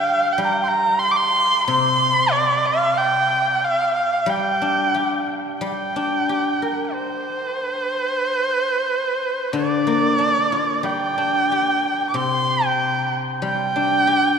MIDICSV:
0, 0, Header, 1, 3, 480
1, 0, Start_track
1, 0, Tempo, 650759
1, 287, Time_signature, 2, 2, 24, 8
1, 3161, Tempo, 665927
1, 4601, Tempo, 653595
1, 8921, Tempo, 641026
1, 10585, End_track
2, 0, Start_track
2, 0, Title_t, "Erhu"
2, 0, Program_c, 0, 110
2, 6, Note_on_c, 0, 77, 89
2, 240, Note_on_c, 0, 79, 77
2, 251, Note_off_c, 0, 77, 0
2, 327, Note_on_c, 0, 82, 65
2, 338, Note_off_c, 0, 79, 0
2, 344, Note_on_c, 0, 79, 78
2, 356, Note_off_c, 0, 82, 0
2, 473, Note_on_c, 0, 84, 69
2, 484, Note_off_c, 0, 79, 0
2, 503, Note_on_c, 0, 82, 89
2, 514, Note_off_c, 0, 84, 0
2, 733, Note_on_c, 0, 84, 96
2, 744, Note_off_c, 0, 82, 0
2, 821, Note_on_c, 0, 86, 88
2, 832, Note_off_c, 0, 84, 0
2, 861, Note_on_c, 0, 84, 102
2, 872, Note_off_c, 0, 86, 0
2, 1230, Note_off_c, 0, 84, 0
2, 1235, Note_on_c, 0, 84, 98
2, 1710, Note_on_c, 0, 74, 87
2, 1721, Note_off_c, 0, 84, 0
2, 1961, Note_on_c, 0, 77, 99
2, 1972, Note_off_c, 0, 74, 0
2, 2201, Note_on_c, 0, 79, 97
2, 2212, Note_off_c, 0, 77, 0
2, 2690, Note_on_c, 0, 77, 98
2, 2701, Note_off_c, 0, 79, 0
2, 2905, Note_off_c, 0, 77, 0
2, 2910, Note_on_c, 0, 77, 83
2, 3174, Note_on_c, 0, 79, 85
2, 3185, Note_off_c, 0, 77, 0
2, 3886, Note_off_c, 0, 79, 0
2, 4127, Note_on_c, 0, 79, 68
2, 5084, Note_on_c, 0, 72, 81
2, 5095, Note_off_c, 0, 79, 0
2, 6984, Note_on_c, 0, 74, 82
2, 6995, Note_off_c, 0, 72, 0
2, 7965, Note_on_c, 0, 79, 81
2, 7976, Note_off_c, 0, 74, 0
2, 8866, Note_off_c, 0, 79, 0
2, 8870, Note_on_c, 0, 86, 66
2, 8917, Note_on_c, 0, 84, 90
2, 8928, Note_off_c, 0, 86, 0
2, 9287, Note_on_c, 0, 79, 84
2, 9298, Note_off_c, 0, 84, 0
2, 9643, Note_off_c, 0, 79, 0
2, 9882, Note_on_c, 0, 79, 93
2, 10585, Note_off_c, 0, 79, 0
2, 10585, End_track
3, 0, Start_track
3, 0, Title_t, "Guzheng"
3, 0, Program_c, 1, 107
3, 0, Note_on_c, 1, 55, 59
3, 270, Note_off_c, 1, 55, 0
3, 279, Note_on_c, 1, 55, 54
3, 1236, Note_on_c, 1, 48, 60
3, 1727, Note_off_c, 1, 55, 0
3, 2673, Note_off_c, 1, 48, 0
3, 3143, Note_on_c, 1, 55, 60
3, 3399, Note_on_c, 1, 62, 48
3, 3636, Note_on_c, 1, 67, 40
3, 4107, Note_off_c, 1, 55, 0
3, 4115, Note_on_c, 1, 55, 59
3, 4359, Note_off_c, 1, 62, 0
3, 4368, Note_on_c, 1, 62, 46
3, 4599, Note_off_c, 1, 67, 0
3, 4607, Note_on_c, 1, 67, 43
3, 4850, Note_on_c, 1, 70, 39
3, 5322, Note_off_c, 1, 62, 0
3, 5558, Note_off_c, 1, 55, 0
3, 5565, Note_off_c, 1, 67, 0
3, 5808, Note_off_c, 1, 70, 0
3, 6985, Note_on_c, 1, 50, 61
3, 7233, Note_on_c, 1, 58, 47
3, 7467, Note_on_c, 1, 62, 41
3, 7713, Note_on_c, 1, 65, 44
3, 7941, Note_on_c, 1, 55, 50
3, 8186, Note_off_c, 1, 62, 0
3, 8195, Note_on_c, 1, 62, 44
3, 8199, Note_off_c, 1, 58, 0
3, 8436, Note_off_c, 1, 50, 0
3, 8444, Note_on_c, 1, 67, 41
3, 8683, Note_off_c, 1, 65, 0
3, 8902, Note_on_c, 1, 48, 56
3, 9159, Note_off_c, 1, 62, 0
3, 9395, Note_off_c, 1, 55, 0
3, 9402, Note_off_c, 1, 67, 0
3, 9859, Note_on_c, 1, 55, 55
3, 10112, Note_on_c, 1, 62, 48
3, 10348, Note_on_c, 1, 67, 45
3, 10350, Note_off_c, 1, 48, 0
3, 10585, Note_off_c, 1, 55, 0
3, 10585, Note_off_c, 1, 62, 0
3, 10585, Note_off_c, 1, 67, 0
3, 10585, End_track
0, 0, End_of_file